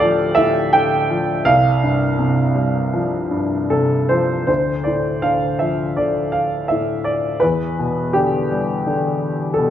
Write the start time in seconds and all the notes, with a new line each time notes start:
Already playing: D2 A2 D3 A3 G4 A4 F5
0.00 F3 D5
0.35 A2 E5
0.73 D3 G5
1.10 F3
1.45 C2 F5
1.83 G2
2.19 C3
2.55 G3
2.93 F3
3.31 G2
3.70 C3 A4
4.09 F3 C5
4.47 D2 C5
4.84 A2 D5
5.22 D3 F5
5.59 F3 E5
5.97 D3 D5
6.32 F5
6.68 A2 E5
7.04 D5
7.40 E2 B4
7.79 B2
8.13 D3 G4
8.51 G3
8.87 D3
9.54 B2 A4